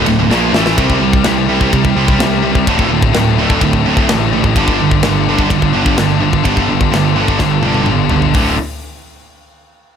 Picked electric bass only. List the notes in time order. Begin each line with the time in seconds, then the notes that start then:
0.07 D1
0.18 D1
0.30 A#1
0.53 A1
0.78 C2
1.01 C2
1.26 C2
1.73 C2
1.96 C2
2.19 C2
2.67 D1
2.91 D1
3.15 D1
3.61 D1
3.86 D1
4.10 A1
4.56 G1
4.82 G1
5.04 G1
5.50 G1
5.75 G1
5.98 G1
6.46 G1
6.70 G1
6.94 G1
7.40 G1
7.65 G1
7.89 G1
8.35 D1